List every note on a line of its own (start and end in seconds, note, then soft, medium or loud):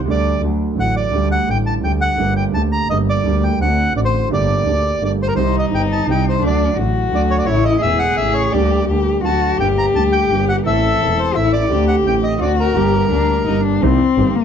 0.06 0.40 D2 medium
0.06 0.41 D2 soft
0.06 0.39 D3 medium
0.06 0.40 G3 soft
0.06 0.41 A3 soft
0.10 0.42 G4 soft
0.10 0.42 D5 medium
0.40 0.75 D2 soft
0.40 0.76 D2 soft
0.40 0.73 D3 soft
0.40 0.74 F#3 soft
0.40 0.76 A3 soft
0.44 0.77 F#4 soft
0.75 1.11 A1 soft
0.75 1.11 A2 soft
0.75 1.10 D3 soft
0.75 1.10 F#3 soft
0.75 1.11 A3 soft
0.79 1.12 F#4 soft
0.79 0.95 F#5 medium
0.96 1.29 D5 medium
1.11 1.46 D2 medium
1.11 1.47 D2 soft
1.11 1.46 D3 soft
1.11 1.46 G3 soft
1.11 1.47 A3 soft
1.16 1.48 G4 soft
1.32 1.49 F#5 medium
1.47 1.82 A1 soft
1.47 1.82 A2 soft
1.47 1.79 D3 soft
1.47 1.81 G3 soft
1.47 1.82 A3 soft
1.47 1.83 G4 soft
1.47 1.58 G5 medium
1.66 1.74 A5 medium
1.82 2.16 D2 soft
1.82 2.15 D3 soft
1.82 2.16 G3 soft
1.82 2.16 A3 soft
1.82 2.18 G4 soft
1.82 1.92 G5 medium
2.01 2.34 F#5 medium
2.16 2.52 G1 medium
2.16 2.52 G1 soft
2.16 2.52 G2 soft
2.16 2.51 D3 soft
2.16 2.52 A3 soft
2.16 2.52 A#3 soft
2.16 2.53 G4 soft
2.37 2.44 G5 medium
2.52 2.87 D2 soft
2.52 2.87 D3 soft
2.52 2.87 A3 soft
2.52 2.88 A#3 soft
2.52 2.89 G4 soft
2.52 2.62 A5 medium
2.72 2.88 A#5 medium
2.88 3.22 G1 soft
2.88 3.23 G1 soft
2.88 3.23 G2 soft
2.88 3.22 D3 soft
2.88 3.23 A3 soft
2.88 3.24 A#3 soft
2.88 2.98 D#5 medium
2.93 3.24 G4 soft
3.09 3.44 D5 medium
3.24 3.58 D2 medium
3.24 3.58 D2 soft
3.24 3.57 D3 soft
3.24 3.58 G3 soft
3.24 3.59 A#3 soft
3.28 3.59 G4 soft
3.44 3.59 G5 medium
3.58 3.93 D2 soft
3.58 3.60 D3 soft
3.58 3.92 D3 soft
3.58 3.93 A3 soft
3.58 3.94 C4 soft
3.58 3.93 F#5 medium
3.62 3.94 F#4 soft
3.93 4.28 A1 soft
3.93 4.29 A1 soft
3.93 4.29 A2 soft
3.93 4.27 D3 soft
3.93 4.29 A3 soft
3.93 4.29 C4 soft
3.93 4.01 D5 medium
3.98 4.30 F#4 soft
4.05 4.29 C5 medium
4.29 4.64 G1 medium
4.29 4.64 G1 soft
4.29 4.64 G2 soft
4.29 4.63 D3 soft
4.29 4.64 A3 soft
4.29 4.64 A#3 soft
4.29 4.65 G4 soft
4.33 5.03 D5 medium
4.65 4.99 D2 soft
4.65 4.98 D3 soft
4.65 4.99 A3 soft
4.65 5.00 A#3 soft
4.65 5.00 G4 soft
5.00 5.34 G1 soft
5.00 5.35 G1 soft
5.00 5.34 G2 soft
5.00 5.34 D3 soft
5.00 5.34 A3 soft
5.00 5.35 A#3 soft
5.00 5.36 G4 soft
5.05 5.12 D5 medium
5.22 5.28 C5 medium
5.28 5.34 A#4 medium
5.35 5.69 C2 medium
5.35 5.70 C2 soft
5.35 5.70 C3 soft
5.35 5.68 D#3 soft
5.35 5.70 G3 soft
5.35 5.70 C4 soft
5.35 6.38 D#4 medium
5.35 5.56 C5 medium
5.39 5.71 G4 soft
5.59 5.65 D#5 medium
5.70 6.05 G1 soft
5.70 6.05 G2 soft
5.70 6.04 D#3 soft
5.70 6.05 G3 soft
5.70 6.06 C4 soft
5.74 6.06 G4 soft
5.74 5.82 G5 medium
5.92 6.07 A5 medium
6.06 6.40 C2 soft
6.06 6.41 C2 soft
6.06 6.41 C3 soft
6.06 6.40 D#3 soft
6.06 6.40 G3 soft
6.06 6.41 C4 soft
6.06 6.42 G4 soft
6.11 6.25 G5 medium
6.29 6.43 C5 medium
6.40 6.75 D2 medium
6.40 6.76 D2 soft
6.40 6.74 D3 soft
6.40 6.75 F#3 soft
6.40 6.76 A3 soft
6.40 6.73 D4 medium
6.44 6.77 F#4 soft
6.44 6.77 D5 medium
6.75 7.11 A1 soft
6.75 7.11 A2 soft
6.75 7.10 D3 soft
6.75 7.11 F#3 soft
6.75 7.11 A3 soft
6.75 7.48 F#4 medium
6.80 7.12 F#4 soft
7.12 7.46 D2 soft
7.12 7.46 D3 soft
7.12 7.46 F#3 soft
7.12 7.47 A3 soft
7.12 7.47 F#4 soft
7.12 7.22 D5 medium
7.31 7.37 C#5 medium
7.39 7.45 D5 medium
7.45 7.81 A1 medium
7.45 7.82 A2 medium
7.45 7.80 C#3 soft
7.45 7.81 E3 soft
7.45 7.81 E4 medium
7.45 7.64 C#5 medium
7.49 7.82 A1 soft
7.49 7.82 A3 soft
7.49 7.82 E4 soft
7.65 7.81 D#5 medium
7.82 8.16 E1 soft
7.82 8.17 E1 soft
7.82 8.16 E2 soft
7.82 8.15 C#3 soft
7.82 8.16 E3 soft
7.82 8.17 A3 soft
7.82 8.17 E4 soft
7.82 8.54 G#4 medium
7.82 7.99 E5 medium
7.99 8.16 F#5 medium
8.16 8.52 A1 soft
8.16 8.52 A2 soft
8.16 8.51 C#3 soft
8.16 8.52 E3 soft
8.16 8.52 A3 soft
8.16 8.34 E5 medium
8.21 8.53 E4 soft
8.34 8.53 C#5 medium
8.52 8.87 D2 medium
8.52 8.87 D2 soft
8.52 8.54 D3 soft
8.52 8.87 D3 soft
8.52 8.87 G3 soft
8.52 8.87 A#3 soft
8.52 8.87 G4 medium
8.52 8.88 G4 soft
8.52 8.85 D5 medium
8.87 9.22 D2 soft
8.87 9.23 D2 soft
8.87 8.90 D3 soft
8.87 9.21 D3 soft
8.87 9.22 G3 soft
8.87 9.23 A#3 soft
8.87 9.21 G4 medium
8.92 9.24 G4 soft
9.22 9.57 D2 soft
9.22 9.58 D2 soft
9.22 9.24 D3 soft
9.22 9.57 D3 soft
9.22 9.57 F#3 soft
9.22 9.58 A3 soft
9.22 9.59 F#4 medium
9.22 9.57 A5 medium
9.27 9.59 F#4 soft
9.58 9.93 G1 medium
9.58 9.93 G1 soft
9.58 9.94 G2 soft
9.58 9.92 D3 soft
9.58 9.93 G3 soft
9.58 9.94 A#3 soft
9.58 10.64 G4 medium
9.58 9.68 G5 medium
9.63 9.94 G4 soft
9.78 9.86 A#5 medium
9.94 10.28 D2 soft
9.94 10.29 D2 soft
9.94 10.28 D3 soft
9.94 10.28 G3 soft
9.94 10.29 A#3 soft
9.94 10.03 A5 medium
9.98 10.30 G4 soft
10.12 10.45 G5 medium
10.29 10.63 G1 soft
10.29 10.64 G1 soft
10.29 10.64 G2 soft
10.29 10.63 D3 soft
10.29 10.63 G3 soft
10.29 10.64 A#3 soft
10.29 10.65 G4 soft
10.49 10.56 F#5 medium
10.64 10.99 A1 medium
10.64 10.99 A1 soft
10.64 10.99 A2 soft
10.64 10.98 E3 soft
10.64 10.99 A3 soft
10.64 10.99 C4 soft
10.64 11.37 A4 medium
10.64 11.00 A4 soft
10.64 11.20 E5 medium
10.99 11.34 E1 soft
10.99 11.34 E2 soft
10.99 11.33 E3 soft
10.99 11.34 A3 soft
10.99 11.35 C4 soft
10.99 11.35 A4 soft
11.19 11.36 C5 medium
11.34 11.69 A1 soft
11.34 11.69 A2 soft
11.34 11.68 E3 soft
11.34 11.68 A3 soft
11.34 11.69 C4 soft
11.34 11.70 E4 medium
11.34 11.52 E5 medium
11.38 11.70 A4 soft
11.53 11.86 D5 medium
11.68 12.04 D2 soft
11.68 12.04 D2 medium
11.68 11.70 D3 soft
11.68 12.02 D3 medium
11.68 12.03 A3 soft
11.68 12.04 C4 soft
11.68 12.37 G4 medium
11.68 12.04 G4 soft
11.88 11.96 F#5 medium
12.04 12.39 A1 soft
12.04 12.39 A2 soft
12.04 12.38 D3 soft
12.04 12.39 A3 soft
12.04 12.40 C4 soft
12.04 12.15 G5 medium
12.08 12.40 G4 soft
12.24 12.40 D#5 medium
12.39 12.74 D2 soft
12.39 12.75 D2 soft
12.39 12.73 D3 soft
12.39 12.74 A3 soft
12.39 12.75 C4 soft
12.39 12.78 F#4 medium
12.39 12.52 D5 medium
12.44 12.76 F#4 soft
12.60 13.61 A#4 medium
12.74 13.09 G1 medium
12.74 13.10 G1 soft
12.74 13.10 G2 medium
12.74 13.08 D3 soft
12.74 13.09 G3 soft
12.74 13.10 A#3 soft
12.74 13.11 G4 medium
12.74 13.11 G4 soft
13.10 13.45 D2 soft
13.10 13.45 D3 soft
13.10 13.45 G3 soft
13.10 13.45 A#3 soft
13.10 13.44 D4 medium
13.10 13.46 G4 soft
13.46 13.80 G1 soft
13.46 13.81 G1 soft
13.46 13.81 G2 soft
13.46 13.80 D3 soft
13.46 13.81 G3 soft
13.46 13.81 A#3 soft
13.46 13.63 D#4 medium
13.50 13.82 G4 soft
13.63 13.84 D4 medium
13.81 13.97 C2 medium
13.81 13.98 C2 medium
13.81 13.98 C3 medium
13.81 13.97 D#3 medium
13.81 13.97 A#3 medium
13.81 13.97 C4 medium
13.81 14.37 C4 medium
13.81 13.98 G4 medium
14.17 14.32 G1 medium
14.17 14.33 G1 soft
14.17 14.33 G2 soft
14.17 14.32 D#3 soft
14.17 14.33 A#3 soft
14.17 14.33 C4 soft
14.17 14.32 G4 soft
14.35 14.45 A#3 medium